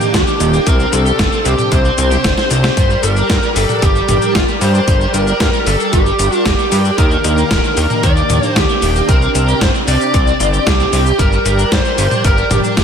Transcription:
Already playing: D#3 A#3 D4 G4
0.01 A#3, shaker
0.14 D#2 G3 G4, kick, snare, closed hi-hat, shaker
0.27 D#3, shaker
0.40 D#1 D#3, closed hi-hat, shaker
0.53 A#3, shaker
0.66 C2 C3 C4 G4 A#4, kick, closed hi-hat, shaker
0.80 C4, shaker
0.93 C2 C4 A4, closed hi-hat, shaker
1.06 G4, shaker
1.19 G1 D4, kick, snare, closed hi-hat, shaker
1.32 C4, shaker
1.45 C2 C4 G4, closed hi-hat, shaker
1.59 G4, mid tom, shaker
1.72 C2 C4 C5, kick, closed hi-hat, shaker
1.85 C4, shaker
1.98 C2 C4, closed hi-hat, shaker
2.11 G4, snare, shaker
2.24 G1 D4, kick, snare, closed hi-hat, shaker
2.38 C4, snare, shaker
2.51 C2 C4 C5, closed hi-hat, shaker
2.64 G4, snare, shaker
2.77 G1 G3 A#4 D5, kick, closed hi-hat, shaker
2.90 G3, shaker
3.03 G1 G3 A#4, closed hi-hat, shaker
3.16 D4, shaker
3.30 G2 A#3, kick, snare, closed hi-hat, shaker
3.43 G3, shaker
3.56 G1 G3 A4, open hi-hat, shaker
3.69 D4, mid tom, shaker
3.82 G1 G3 G4, kick, closed hi-hat, shaker
3.95 G3, shaker
4.09 G1 G3, closed hi-hat, mid tom, shaker
4.22 D4, shaker
4.35 G1 A#3 F4, kick, snare, closed hi-hat, shaker
4.48 G3, shaker
4.61 G2 G3 C5, open hi-hat, shaker
4.74 D4, shaker
4.88 G1 G3, kick, closed hi-hat, shaker
5.01 G3, shaker
5.14 G1 G3 A#4, closed hi-hat, shaker
5.27 D4, shaker
5.40 G2 A#3, kick, snare, closed hi-hat, shaker
5.53 G3, shaker
5.67 G1 G3 A4, open hi-hat, shaker
5.80 D4, shaker
5.93 G1 G3 G4, kick, closed hi-hat, shaker
6.06 G3, shaker
6.19 G1 G3, closed hi-hat, shaker
6.32 D4, shaker
6.46 G1 A#3 G4, kick, snare, closed hi-hat, shaker
6.59 G3, shaker
6.72 G2 G3, open hi-hat, shaker
6.85 D4, shaker
6.98 D#2 D#3 A#3 D4 A#4, kick, closed hi-hat, shaker
7.11 D#3, shaker
7.24 D#2 D#3, closed hi-hat, shaker
7.38 A#3, shaker
7.51 D#1 G3 A#4, kick, snare, closed hi-hat, shaker
7.64 D#3, shaker
7.77 D#2 D#3, open hi-hat, shaker
7.90 A#3, mid tom, shaker
8.03 D#2 D#3 D5, kick, closed hi-hat, shaker
8.17 D#3, shaker
8.30 D#2 D#3, closed hi-hat, mid tom, shaker
8.43 A#3 C5, shaker
8.56 D#2 G3 G4, kick, snare, closed hi-hat, shaker
8.69 D#3, shaker
8.82 D#1 D#3, open hi-hat, shaker
8.95 A#3, shaker
9.09 C2 C3 C4 G4 A#4, kick, closed hi-hat, shaker
9.22 C4, shaker
9.35 C2 C4, closed hi-hat, shaker
9.48 G4, shaker
9.61 G1 D4 C5, kick, snare, closed hi-hat, shaker
9.74 C4, shaker
9.88 C2 C4 D5, open hi-hat, shaker
10.01 G4, shaker
10.14 C2 C4, kick, closed hi-hat, shaker
10.27 C4, shaker
10.40 G1 C4, closed hi-hat, shaker
10.54 G4, shaker
10.66 C2 D4 G4, kick, snare, closed hi-hat, shaker
10.80 C4, shaker
10.93 C2 C4, open hi-hat, shaker
11.06 G4, shaker
11.19 G1 G3 A#4 D5, kick, closed hi-hat, shaker
11.32 G3, shaker
11.46 G1 G3, closed hi-hat, shaker
11.59 D4, shaker
11.72 G2 A#3 C5, kick, snare, closed hi-hat, shaker
11.85 G3, shaker
11.98 G1 G3, open hi-hat, shaker
12.11 D4, mid tom, shaker
12.24 G1 G3 A#4, kick, closed hi-hat, shaker
12.38 G3, shaker
12.51 G1 G3 G4, closed hi-hat, mid tom, shaker
12.64 D4, shaker
12.77 G1 A#3 G4, kick, snare, closed hi-hat, shaker

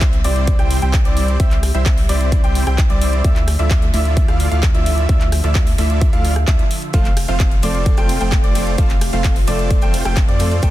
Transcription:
Already playing: C2 C3 G3 C4 E4 C5 E5
0.01 kick, clap, closed hi-hat
0.13 closed hi-hat
0.24 C2 G3 C4 E4 C5 D5, open hi-hat
0.36 closed hi-hat
0.47 kick, closed hi-hat
0.59 C2 G3 C4 E4 C5 G5, cross-stick, closed hi-hat
0.70 open hi-hat
0.82 C2 G3 C4 E4 C5 G5, closed hi-hat
0.94 kick, cross-stick, clap, closed hi-hat
1.05 C2 G3 C4 E4 C5 D5, closed hi-hat
1.17 open hi-hat
1.28 closed hi-hat
1.40 C2 G3 C4 E4 C5 E5, kick, closed hi-hat
1.51 clap, closed hi-hat
1.63 cross-stick, open hi-hat
1.74 C2 G3 C4 E4 C5 E5, closed hi-hat
1.86 kick, clap, closed hi-hat
1.98 open hi-hat
2.09 C2 G3 C4 E4 C5 D5, open hi-hat
2.21 closed hi-hat
2.32 kick, closed hi-hat
2.44 C2 G3 C4 E4 C5 G5, closed hi-hat
2.55 open hi-hat
2.67 C2 G3 C4 E4 C5 G5, cross-stick, closed hi-hat
2.78 kick, clap, closed hi-hat
2.90 C2 G3 C4 E4 C5 D5, closed hi-hat
3.01 open hi-hat
3.13 closed hi-hat
3.24 D2 D3 F3 A3 E4 F4 D5 E5, kick, closed hi-hat
3.36 clap, closed hi-hat
3.48 cross-stick, open hi-hat
3.59 D2 A3 E4 F4 D5 E5, closed hi-hat
3.71 kick, clap, closed hi-hat
3.82 closed hi-hat
3.94 D2 A3 E4 F4 D5 E5, open hi-hat
4.05 closed hi-hat
4.17 kick, closed hi-hat
4.28 D2 A3 E4 F4 D5 F5, cross-stick, closed hi-hat
4.40 open hi-hat
4.51 D2 A3 E4 F4 D5 F5, closed hi-hat
4.63 kick, cross-stick, clap, closed hi-hat
4.74 D2 A3 E4 F4 D5 E5, closed hi-hat
4.86 open hi-hat
4.98 closed hi-hat
5.09 D2 A3 E4 F4 D5 E5, kick, closed hi-hat
5.21 clap, closed hi-hat
5.32 cross-stick, open hi-hat
5.44 D2 A3 E4 F4 D5 E5, closed hi-hat
5.55 kick, clap, closed hi-hat
5.67 open hi-hat
5.78 D2 A3 E4 F4 D5 E5, open hi-hat
5.90 closed hi-hat
6.01 kick, closed hi-hat
6.13 D2 A3 E4 F4 D5 F5, closed hi-hat
6.25 open hi-hat
6.36 cross-stick, closed hi-hat
6.48 D2 A3 E4 F4 D5 E5, kick, clap, closed hi-hat
6.59 closed hi-hat
6.71 open hi-hat
6.82 closed hi-hat
6.93 F1 C3 F3 A3 C4 F4 A4 C5 F5, kick, closed hi-hat
7.05 clap, closed hi-hat
7.17 cross-stick, open hi-hat, ride
7.28 F1 F3 A3 C4 F4 A4 C5 F5, closed hi-hat
7.40 kick, clap, closed hi-hat
7.51 closed hi-hat
7.62 F1 F3 A3 C4 F4 A4 C5 D5, open hi-hat, ride
7.75 closed hi-hat
7.86 kick, closed hi-hat
7.97 F1 F3 A3 C4 F4 A4 C5 G5, cross-stick, closed hi-hat
8.09 open hi-hat, ride
8.20 F1 F3 A3 C4 F4 A4 C5 G5, closed hi-hat
8.32 kick, cross-stick, clap, closed hi-hat
8.44 F1 A3 C4 F4 C5 D5, closed hi-hat
8.55 F3 A3 C4 A4, open hi-hat, ride
8.67 closed hi-hat
8.78 F1 F3 A3 C4 F4 A4 C5 F5, kick, closed hi-hat
8.90 clap, closed hi-hat
9.01 cross-stick, open hi-hat, ride
9.12 F1 F3 A3 C4 F4 A4 C5 F5, closed hi-hat
9.24 kick, clap, closed hi-hat
9.36 open hi-hat
9.47 F1 F3 A3 C4 F4 A4 C5 D5, open hi-hat, ride
9.59 closed hi-hat
9.71 kick, closed hi-hat
9.82 F1 F3 A3 C4 F4 A4 C5 G5, closed hi-hat
9.94 open hi-hat, ride
10.05 F1 F3 A3 C4 F4 A4 C5 G5, cross-stick, closed hi-hat
10.17 kick, clap, closed hi-hat
10.28 F2 A3 C4 F4 C5 D5, closed hi-hat
10.39 F3 A3 C4 A4, open hi-hat, ride
10.52 closed hi-hat
10.62 G1 G2 B2 G3 A3 B3 D4 G4 A4 B4 G5, kick, closed hi-hat

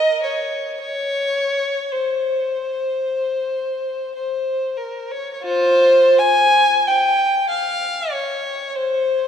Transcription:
Already playing: A#4 D#5
0.23 C#5
0.81 C#5
1.91 C5
4.15 C5
4.77 A#4
5.11 C#5
5.34 C#5
5.42 F4 C5
6.18 G#5
6.87 G5
7.49 F5
8.12 C#5
8.75 C5

